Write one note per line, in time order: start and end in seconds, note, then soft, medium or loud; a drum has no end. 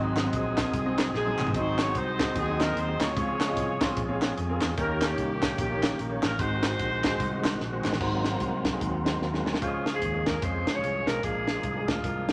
0.00 0.27 G#1 loud
0.00 0.54 G#2 medium
0.00 0.70 F#3 medium
0.00 3.12 F#3 medium
0.00 0.15 C4 medium
0.00 0.33 C4 medium
0.00 3.12 C4 medium
0.00 0.33 D#4 loud
0.00 3.12 D#4 medium
0.00 0.15 F#4 medium
0.00 0.15 G#4 medium
0.00 3.12 G#4 medium
0.00 0.16 D#5 medium
0.17 snare medium
0.17 clap medium
0.17 closed hi-hat medium
0.24 0.43 C4 medium
0.24 0.43 F#4 medium
0.24 0.44 G#4 medium
0.24 0.44 F#5 medium
0.33 0.67 A#1 medium
0.33 1.11 C4 medium
0.33 1.11 D#4 medium
0.33 1.13 G#4 loud
0.33 kick medium
0.33 closed hi-hat medium
0.57 0.72 C4 medium
0.57 0.72 F#4 medium
0.57 0.73 G#4 medium
0.57 0.73 A#4 medium
0.57 kick medium
0.57 snare loud
0.57 clap medium
0.57 closed hi-hat medium
0.73 1.08 C2 medium
0.73 kick loud
0.73 closed hi-hat medium
0.85 1.10 C4 medium
0.85 1.10 F#4 medium
0.85 1.10 G#4 medium
0.85 1.10 D#5 medium
0.98 snare loud
0.98 clap medium
0.98 closed hi-hat medium
1.14 1.35 A#1 loud
1.14 1.91 C4 medium
1.14 1.54 D#4 medium
1.14 1.52 G#4 loud
1.14 snare medium
1.26 1.45 C4 medium
1.26 1.46 F#4 medium
1.26 1.46 G#4 medium
1.26 1.46 D#5 medium
1.26 high tom medium
1.39 1.52 A1 medium
1.39 clap medium
1.39 mid tom medium
1.47 floor tom medium
1.54 1.89 G#1 loud
1.54 2.16 G#2 medium
1.54 1.77 C4 medium
1.54 1.94 D#4 medium
1.54 1.78 F#4 medium
1.54 1.94 F#4 medium
1.54 1.78 G#4 medium
1.54 1.79 C5 loud
1.54 1.78 D#5 medium
1.54 kick loud
1.54 closed hi-hat medium
1.79 1.96 C#5 loud
1.79 snare medium
1.79 clap medium
1.79 closed hi-hat medium
1.87 2.06 C4 medium
1.87 2.06 F#4 medium
1.87 2.06 G#4 medium
1.87 2.06 F#5 medium
1.95 2.29 C2 medium
1.95 2.36 D#4 medium
1.95 2.72 F#4 medium
1.95 2.36 C5 medium
1.95 kick medium
1.95 closed hi-hat medium
2.20 2.34 C4 medium
2.20 2.34 F#4 medium
2.20 2.35 G#4 medium
2.20 2.35 D#5 medium
2.20 kick medium
2.20 snare loud
2.20 clap medium
2.20 closed hi-hat medium
2.35 2.70 D#2 medium
2.35 3.13 C4 medium
2.35 3.13 D#4 medium
2.35 2.59 G#4 loud
2.35 kick loud
2.35 closed hi-hat medium
2.47 2.72 C4 medium
2.47 2.72 F#4 medium
2.47 2.72 G#4 medium
2.47 2.72 D#5 medium
2.60 2.76 A#4 loud
2.60 snare loud
2.60 clap medium
2.60 closed hi-hat medium
2.76 2.97 D#2 loud
2.76 3.01 C5 loud
2.76 closed hi-hat medium
2.88 3.07 C4 medium
2.88 3.07 F#4 medium
2.88 3.07 G#4 medium
2.88 3.08 D#5 medium
3.00 3.14 D2 medium
3.00 4.18 F4 medium
3.00 4.18 G#4 medium
3.00 4.22 C#5 loud
3.00 snare loud
3.00 clap medium
3.00 closed hi-hat medium
3.16 3.51 C#2 loud
3.16 3.77 C#3 medium
3.16 4.74 F3 medium
3.16 4.75 G#3 medium
3.16 3.39 C4 medium
3.16 4.74 C#4 medium
3.16 3.39 F4 medium
3.16 4.75 G#4 medium
3.16 3.39 G#4 medium
3.16 3.39 C#5 medium
3.16 kick loud
3.16 closed hi-hat medium
3.41 snare medium
3.41 clap medium
3.41 closed hi-hat medium
3.47 3.67 C4 medium
3.47 3.67 F4 medium
3.47 3.67 G#4 medium
3.47 3.67 D#5 medium
3.57 3.91 C2 medium
3.57 kick medium
3.57 closed hi-hat loud
3.80 3.95 C4 medium
3.80 3.95 F4 medium
3.80 3.96 G#4 medium
3.80 3.96 C5 loud
3.80 kick medium
3.80 snare loud
3.80 clap medium
3.80 closed hi-hat medium
3.97 4.31 A#1 medium
3.97 kick loud
3.97 closed hi-hat medium
4.08 4.33 C4 medium
4.08 4.33 F4 medium
4.08 4.33 G#4 medium
4.08 4.33 C#5 loud
4.22 snare loud
4.22 clap medium
4.22 closed hi-hat medium
4.37 4.58 F2 medium
4.37 closed hi-hat medium
4.49 4.68 C4 medium
4.49 4.68 F4 medium
4.49 4.69 G#4 medium
4.49 4.69 A#4 medium
4.61 4.75 E2 medium
4.61 snare loud
4.61 clap medium
4.61 closed hi-hat medium
4.77 5.12 D#2 loud
4.77 5.39 D#3 medium
4.77 6.36 D#3 medium
4.77 5.00 A#3 medium
4.77 6.36 A#3 medium
4.77 5.02 C#4 medium
4.77 6.36 C#4 medium
4.77 5.00 D#4 medium
4.77 5.02 G4 medium
4.77 5.00 G4 medium
4.77 6.36 G4 medium
4.77 5.01 A#4 medium
4.77 5.01 C#5 medium
4.77 kick loud
4.77 closed hi-hat medium
5.01 5.58 A#3 medium
5.01 5.58 C#4 medium
5.01 5.58 G4 medium
5.01 snare medium
5.01 clap medium
5.01 closed hi-hat medium
5.09 5.28 A#3 medium
5.09 5.28 D#4 medium
5.09 5.28 G4 medium
5.09 5.29 C#5 medium
5.18 5.52 C2 medium
5.18 kick medium
5.18 closed hi-hat medium
5.42 5.57 A#3 medium
5.42 5.57 D#4 medium
5.42 5.57 G4 medium
5.42 5.57 C#5 medium
5.42 kick medium
5.42 snare loud
5.42 clap medium
5.42 closed hi-hat medium
5.58 5.93 A#1 loud
5.58 6.36 A#3 medium
5.58 6.36 C#4 medium
5.58 5.97 G4 medium
5.58 kick loud
5.58 closed hi-hat medium
5.70 5.94 A#3 medium
5.70 5.94 D#4 medium
5.70 5.95 G4 medium
5.70 5.95 C#5 medium
5.83 snare loud
5.83 clap medium
5.83 closed hi-hat medium
5.99 6.20 A#1 medium
5.99 closed hi-hat medium
6.10 6.30 A#3 medium
6.10 6.30 D#4 medium
6.10 6.30 G4 medium
6.10 6.30 C#5 medium
6.23 6.37 A1 medium
6.23 6.38 A#4 loud
6.23 snare loud
6.23 clap medium
6.23 closed hi-hat medium
6.39 6.73 G#1 loud
6.39 7.00 G#2 medium
6.39 7.97 D#3 medium
6.39 6.62 G#3 medium
6.39 7.97 G#3 medium
6.39 7.97 C4 medium
6.39 6.62 D#4 medium
6.39 7.56 D#4 medium
6.39 6.62 F#4 medium
6.39 7.97 F#4 medium
6.39 7.57 F#4 medium
6.39 6.62 C5 medium
6.39 7.60 C5 loud
6.39 kick loud
6.39 closed hi-hat medium
6.63 snare loud
6.63 clap medium
6.63 closed hi-hat medium
6.71 6.90 G#3 medium
6.71 6.90 D#4 medium
6.71 6.90 F#4 medium
6.71 6.90 C5 medium
6.79 7.14 A#1 medium
6.79 kick medium
6.79 closed hi-hat medium
7.03 7.18 G#3 medium
7.03 7.19 D#4 medium
7.03 7.19 F#4 medium
7.03 7.19 G#4 loud
7.03 kick medium
7.03 snare loud
7.03 clap medium
7.03 closed hi-hat medium
7.20 7.54 C2 loud
7.20 kick loud
7.20 closed hi-hat medium
7.32 7.56 G#3 medium
7.32 7.56 D#4 medium
7.32 7.56 F#4 medium
7.32 7.56 C5 medium
7.44 snare loud
7.44 clap medium
7.44 closed hi-hat medium
7.60 7.81 A#1 medium
7.60 snare medium
7.72 7.91 G#3 medium
7.72 7.92 D#4 medium
7.72 7.92 F#4 medium
7.72 7.92 C5 medium
7.84 7.98 A1 medium
7.84 snare medium
7.84 clap medium
7.93 snare medium
8.00 8.35 G#1 loud
8.00 8.61 G#2 medium
8.00 9.58 F#3 medium
8.00 8.23 G#3 medium
8.00 9.58 A#3 medium
8.00 9.58 C4 medium
8.00 8.23 D#4 medium
8.00 8.23 F#4 medium
8.00 8.23 C5 medium
8.00 kick loud
8.00 crash medium
8.24 snare medium
8.24 closed hi-hat medium
8.32 8.58 G#3 medium
8.32 8.58 D#4 medium
8.32 8.59 F#4 medium
8.32 8.59 C5 medium
8.40 8.75 C2 medium
8.40 kick medium
8.40 closed hi-hat medium
8.65 kick medium
8.65 snare loud
8.65 closed hi-hat medium
8.72 8.91 G#3 medium
8.72 8.91 D#4 medium
8.72 8.91 F#4 medium
8.72 8.92 G#4 medium
8.81 9.15 D#2 medium
8.81 kick loud
8.81 closed hi-hat medium
9.05 9.20 G#3 medium
9.05 9.20 D#4 medium
9.05 9.20 F#4 medium
9.05 9.20 C5 loud
9.05 snare loud
9.05 closed hi-hat medium
9.21 9.42 D#2 medium
9.21 snare soft
9.33 9.52 G#3 medium
9.33 9.52 D#4 medium
9.33 9.53 F#4 medium
9.33 9.53 G#4 medium
9.33 snare medium
9.45 9.59 D2 medium
9.45 snare medium
9.54 snare medium
9.61 9.96 C#2 medium
9.61 10.22 C#3 medium
9.61 11.20 F3 medium
9.61 9.84 G#3 medium
9.61 11.20 G#3 medium
9.61 9.84 C#4 medium
9.61 11.20 C#4 medium
9.61 9.85 F4 medium
9.61 9.92 F4 medium
9.61 9.68 G4 medium
9.61 9.85 C5 medium
9.61 kick loud
9.61 closed hi-hat medium
9.67 11.22 G#4 medium
9.86 snare medium
9.86 closed hi-hat medium
9.93 10.04 G#3 medium
9.93 10.05 C#4 medium
9.93 10.05 F4 medium
9.93 10.25 G#4 medium
9.93 10.05 C5 medium
10.02 10.36 D#2 medium
10.02 kick medium
10.02 closed hi-hat medium
10.13 10.33 G#3 medium
10.13 10.33 C#4 medium
10.13 10.33 F4 medium
10.13 10.33 A#4 medium
10.26 10.45 A#4 medium
10.26 kick medium
10.26 snare loud
10.26 closed hi-hat medium
10.41 10.63 F2 medium
10.41 10.65 G#3 medium
10.41 10.65 C#4 medium
10.41 10.65 F4 medium
10.41 10.65 C5 medium
10.41 10.77 C5 loud
10.41 kick loud
10.41 closed hi-hat medium
10.66 10.80 C#2 medium
10.66 snare loud
10.66 closed hi-hat medium
10.74 10.93 G#3 medium
10.74 10.93 C#4 medium
10.74 10.93 F4 medium
10.74 10.93 C#5 medium
10.74 11.09 C#5 loud
10.81 11.03 C2 medium
10.81 closed hi-hat medium
11.06 11.20 B1 medium
11.06 11.17 G#3 medium
11.06 11.17 C#4 medium
11.06 11.17 F4 medium
11.06 11.23 A#4 loud
11.06 11.17 C5 medium
11.06 snare loud
11.06 closed hi-hat medium
11.22 11.58 A#1 medium
11.22 11.84 A#2 medium
11.22 12.32 F3 medium
11.22 11.45 G#3 medium
11.22 12.32 A#3 medium
11.22 11.46 D4 medium
11.22 12.32 D4 medium
11.22 11.46 F4 medium
11.22 12.32 G#4 medium
11.22 11.85 G#4 medium
11.22 11.46 A#4 medium
11.22 kick loud
11.22 closed hi-hat medium
11.47 snare medium
11.47 closed hi-hat medium
11.54 11.66 G#3 medium
11.54 11.66 D4 medium
11.54 11.66 F4 medium
11.54 11.66 C5 medium
11.63 11.84 C2 medium
11.63 kick medium
11.63 closed hi-hat medium
11.75 11.94 G#3 medium
11.75 11.94 D4 medium
11.75 11.95 F4 medium
11.75 11.95 G#4 medium
11.88 12.02 D2 medium
11.88 12.32 F4 medium
11.88 kick medium
11.88 snare loud
11.88 closed hi-hat medium
12.03 12.32 C2 medium
12.03 12.26 G#3 medium
12.03 12.26 D4 medium
12.03 12.26 F4 medium
12.03 12.27 A#4 medium
12.03 kick loud
12.03 closed hi-hat medium
12.29 snare loud
12.29 closed hi-hat medium